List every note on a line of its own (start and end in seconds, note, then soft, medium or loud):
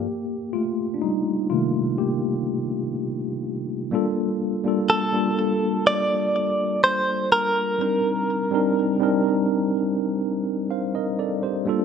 0.00 0.50 A#3 medium
0.00 0.56 G4 medium
0.53 0.93 A3 medium
0.53 0.96 F4 medium
0.94 1.01 D4 medium
1.02 1.48 G3 medium
1.02 1.52 D#4 medium
1.50 2.15 C3 medium
1.50 2.15 D#3 medium
1.50 1.96 A3 medium
1.50 1.99 A#3 medium
1.50 2.00 F4 medium
1.98 2.92 A#3 medium
1.98 2.91 G4 medium
3.91 4.38 G3 medium
3.91 4.38 A#3 medium
3.91 4.39 D4 medium
3.91 4.39 F4 medium
3.91 4.40 A4 loud
4.64 4.95 G3 medium
4.64 4.95 A#3 medium
4.64 4.96 D4 medium
4.64 4.96 F4 medium
4.64 4.97 A4 medium
4.90 5.86 A4 medium
5.12 6.35 G3 medium
5.12 6.36 A#3 medium
5.12 6.36 D4 medium
5.12 6.37 F4 medium
5.12 6.37 A4 medium
5.87 6.83 D5 loud
6.84 7.32 C5 loud
7.32 9.21 A#4 medium
7.78 8.25 G3 medium
7.78 8.25 C4 medium
7.78 8.26 D4 medium
7.78 8.26 D#4 medium
7.78 8.27 A#4 medium
8.51 8.82 G3 medium
8.51 8.83 C4 medium
8.51 8.83 D4 medium
8.51 8.84 D#4 medium
8.55 8.84 A#4 loud
8.99 10.22 G3 medium
8.99 10.23 C4 medium
8.99 10.23 D4 medium
8.99 10.24 D#4 medium
8.99 10.24 A#4 loud
10.71 10.93 C5 medium
10.71 10.93 F5 medium
10.95 11.18 A#4 medium
10.95 11.17 D#5 medium
11.19 11.42 A4 medium
11.19 11.41 D5 medium
11.43 11.85 G4 medium
11.43 11.85 C5 medium
11.65 11.85 G3 medium
11.65 11.85 A#3 medium
11.65 11.85 D4 medium
11.65 11.85 F4 medium
11.65 11.85 A4 loud